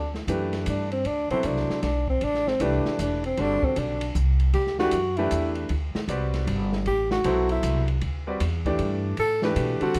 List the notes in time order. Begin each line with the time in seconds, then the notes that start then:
Already playing: D2 D4
0.14 snare
0.27 F#2 E3 A3 D4 G4 B4, hi-hat pedal, ride
0.53 snare, ride
0.66 G2 D4, hi-hat pedal, ride
0.92 C4, ride
1.05 D2 D4, ride
1.30 B2 F#3 C4 E4 A4 C5, muted upright bass stroke, ride
1.43 C2 D4, hi-hat pedal, ride
1.57 snare
1.69 muted upright bass stroke, snare
1.83 B1 D4, snare, ride
2.08 C4, kick
2.21 A1 D4, ride
2.34 snare
2.48 C4, snare
2.60 C2 E3 A3 D4 G4 B4, hi-hat pedal, ride
2.85 snare
2.99 E1 D4, hi-hat pedal, ride
3.24 C4, ride
3.37 G1 D3 G3 C4 D4 F#4 A4, ride
3.63 C4, muted upright bass stroke, kick
3.76 B1 D4, hi-hat pedal, ride
4.01 ride
4.15 C2, hi-hat pedal
4.40 ride
4.53 D2 G4, ride
4.67 snare
4.79 E3 A3 D4 F#4 G4 B4, snare
4.91 F#2, hi-hat pedal, ride
5.17 E3 A3 D4 E4 G4 B4, ride
5.31 E2, hi-hat pedal, ride
5.55 ride
5.69 D2, ride
5.95 muted upright bass stroke, snare
6.08 C2 G3 C4 F#4 B4 D5, hi-hat pedal, ride
6.34 snare, ride
6.47 G1, ride
6.73 snare
6.86 A1 G4, ride
7.11 F#4, snare
7.24 B1 B2 F#3 E4 A4 C5, hi-hat pedal, ride
7.49 E4, ride
7.63 C2, hi-hat pedal, ride
7.88 ride
8.01 D2, ride
8.27 G3 C4 F#4 B4 D5
8.40 E2, hi-hat pedal, ride
8.65 E3 A3 D4 G4 D5, kick, ride
8.79 G2, ride
9.17 A2 A4, ride
9.42 E3 A3 D4 G4 B4, snare
9.56 B2, hi-hat pedal, ride
9.81 D3 G3 C4 F#4 A4, muted upright bass stroke, ride
9.94 A2, hi-hat pedal, ride